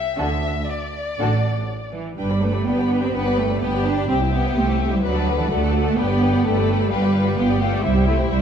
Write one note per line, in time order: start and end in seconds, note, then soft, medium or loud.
0.00 0.18 E5 medium
0.18 0.60 D2 soft
0.18 0.41 D3 soft
0.18 0.41 D4 soft
0.18 0.41 F#4 soft
0.18 0.42 A4 soft
0.18 0.68 E5 medium
0.69 1.94 D5 soft
1.18 1.60 A1 soft
1.18 1.60 A2 soft
1.18 1.42 D3 soft
1.18 1.42 D4 soft
1.18 1.42 F#4 soft
1.18 1.42 A4 soft
1.93 2.16 E3 soft
2.18 2.61 G1 medium
2.18 2.42 G3 medium
2.18 2.29 D4 soft
2.18 2.29 B4 soft
2.18 2.30 G5 soft
2.30 2.42 G4 soft
2.30 2.42 D5 soft
2.30 2.43 D5 soft
2.30 2.42 B5 soft
2.42 2.66 A3 medium
2.42 2.54 D4 soft
2.42 2.54 B4 soft
2.42 2.54 G5 soft
2.54 2.67 G4 soft
2.54 2.66 D5 soft
2.54 2.67 D5 soft
2.54 2.66 B5 soft
2.66 3.08 G1 soft
2.66 3.02 B3 medium
2.66 2.77 D4 soft
2.66 2.77 B4 soft
2.66 2.78 B4 soft
2.66 2.77 G5 soft
2.78 2.90 G4 soft
2.78 2.90 D5 soft
2.78 2.91 B5 soft
2.90 3.02 D4 soft
2.90 3.02 B4 soft
2.90 3.02 G5 soft
3.02 3.14 C4 medium
3.02 3.14 G4 soft
3.02 3.14 D5 soft
3.02 3.14 B5 soft
3.13 3.56 G1 soft
3.13 3.37 B3 medium
3.13 3.24 D4 soft
3.13 3.25 B4 soft
3.13 3.58 B4 medium
3.13 3.25 B4 soft
3.13 3.25 G5 soft
3.25 3.38 G4 soft
3.25 3.37 D5 soft
3.25 3.38 D5 soft
3.25 3.37 B5 soft
3.37 3.61 A3 medium
3.37 3.49 D4 soft
3.37 3.49 B4 soft
3.37 3.50 G5 soft
3.49 3.61 G4 soft
3.49 3.61 D5 soft
3.49 3.62 D5 soft
3.49 3.62 B5 soft
3.61 4.03 G1 medium
3.61 3.85 B3 medium
3.61 3.72 D4 soft
3.61 4.08 G4 medium
3.61 3.72 B4 soft
3.61 3.73 B4 soft
3.61 3.73 G5 soft
3.73 3.85 G4 soft
3.73 3.85 D5 soft
3.73 3.85 B5 soft
3.84 4.08 D4 medium
3.84 3.96 D4 soft
3.84 3.96 B4 soft
3.84 3.97 B4 soft
3.84 3.97 G5 soft
3.96 4.06 G4 soft
3.96 4.08 D5 soft
3.96 4.09 D5 soft
3.96 4.09 B5 soft
4.07 4.50 C2 medium
4.07 4.19 C4 soft
4.07 4.16 C4 medium
4.07 4.19 G4 soft
4.07 5.02 G4 medium
4.07 4.20 E5 soft
4.07 4.20 G5 soft
4.20 4.32 E4 soft
4.20 4.33 C5 soft
4.20 4.33 E5 soft
4.32 4.56 B3 medium
4.32 4.44 C4 soft
4.32 4.44 G4 soft
4.32 4.44 E5 soft
4.32 4.45 G5 soft
4.44 4.56 E4 soft
4.44 4.57 C5 soft
4.44 4.56 E5 soft
4.56 4.98 C2 soft
4.56 4.92 A3 medium
4.56 4.67 C4 soft
4.56 4.67 G4 soft
4.56 4.68 E5 soft
4.56 4.68 G5 soft
4.68 4.80 E4 soft
4.68 4.81 C5 soft
4.68 4.80 E5 soft
4.80 4.92 C4 soft
4.80 4.92 G4 soft
4.80 4.92 E5 soft
4.80 4.92 G5 soft
4.91 5.04 G3 medium
4.91 5.03 E4 soft
4.91 5.04 C5 soft
4.91 5.04 E5 soft
5.03 5.45 D2 medium
5.03 5.38 F#3 medium
5.03 5.14 F#4 soft
5.03 5.49 B4 medium
5.03 5.14 D5 soft
5.03 5.14 F#5 soft
5.14 5.26 A4 soft
5.14 5.27 D5 soft
5.14 5.26 F#5 soft
5.14 5.27 A5 soft
5.26 5.38 F#4 soft
5.26 5.38 D5 soft
5.26 5.38 F#5 soft
5.38 5.44 E3 medium
5.38 5.50 A4 soft
5.38 5.51 D5 soft
5.38 5.50 F#5 soft
5.38 5.50 A5 soft
5.49 5.92 D2 medium
5.49 5.97 A3 medium
5.49 5.61 F#4 soft
5.49 5.98 A4 medium
5.49 5.61 D5 soft
5.49 5.61 F#5 soft
5.62 5.74 A4 soft
5.62 5.74 D5 soft
5.62 5.74 F#5 soft
5.62 5.74 A5 soft
5.73 5.86 F#4 soft
5.73 5.86 D5 soft
5.73 5.86 F#5 soft
5.85 5.97 A4 soft
5.85 5.98 D5 soft
5.85 5.97 F#5 soft
5.85 5.98 A5 soft
5.97 6.39 G1 medium
5.97 6.45 B3 medium
5.97 6.09 D4 soft
5.97 6.45 G4 medium
5.97 6.08 B4 soft
5.97 6.09 B4 soft
5.97 6.08 G5 soft
6.09 6.21 G4 soft
6.09 6.21 D5 soft
6.09 6.22 D5 soft
6.09 6.21 B5 soft
6.21 6.33 D4 soft
6.21 6.33 B4 soft
6.21 6.33 G5 soft
6.33 6.45 G4 soft
6.33 6.45 D5 soft
6.33 6.45 B5 soft
6.44 6.86 G1 medium
6.44 6.91 A3 medium
6.44 6.56 D4 soft
6.44 6.91 A4 medium
6.44 6.56 B4 soft
6.44 6.56 G5 soft
6.57 6.68 G4 soft
6.57 6.69 D5 soft
6.57 6.69 B5 soft
6.68 6.80 D4 soft
6.68 6.80 B4 soft
6.68 6.81 B4 soft
6.68 6.80 G5 soft
6.80 6.92 G4 soft
6.80 6.92 D5 soft
6.80 6.92 B5 soft
6.91 7.33 G1 medium
6.91 7.38 G3 medium
6.91 7.03 F4 soft
6.91 7.37 B4 medium
6.91 7.03 B4 soft
6.91 7.02 F5 soft
6.91 7.02 G5 soft
7.03 7.15 G4 soft
7.03 7.15 D5 soft
7.03 7.13 G5 soft
7.14 7.27 F4 soft
7.14 7.27 B4 soft
7.14 7.26 F5 soft
7.14 7.25 G5 soft
7.27 7.38 G4 soft
7.27 7.38 D5 soft
7.27 7.37 G5 soft
7.38 7.79 G1 medium
7.38 7.61 B3 medium
7.38 7.49 F4 soft
7.38 7.84 G4 medium
7.38 7.49 B4 soft
7.38 7.49 F5 soft
7.38 7.49 G5 soft
7.50 7.61 G4 soft
7.50 7.61 D5 soft
7.50 7.61 G5 soft
7.61 7.84 A3 medium
7.61 7.73 F4 soft
7.61 7.73 B4 soft
7.61 7.73 F5 soft
7.61 7.72 G5 soft
7.72 7.84 G4 soft
7.72 7.84 D5 soft
7.72 7.85 D5 soft
7.72 7.85 G5 soft
7.84 8.26 C2 medium
7.84 8.08 G3 medium
7.84 7.95 E4 soft
7.84 8.42 E4 medium
7.84 7.95 C5 soft
7.84 7.95 E5 medium
7.95 8.07 G4 soft
7.95 8.08 C5 soft
7.95 8.07 E5 soft
7.95 8.08 G5 soft
8.07 8.16 A3 medium
8.07 8.19 E4 soft
8.07 8.19 C5 soft
8.07 8.19 E5 soft
8.18 8.31 G4 soft
8.18 8.30 C5 soft
8.18 8.31 E5 soft
8.18 8.31 G5 soft
8.30 8.42 C2 medium
8.30 8.42 G3 medium
8.30 8.42 E4 soft
8.30 8.42 C5 soft
8.30 8.42 E5 soft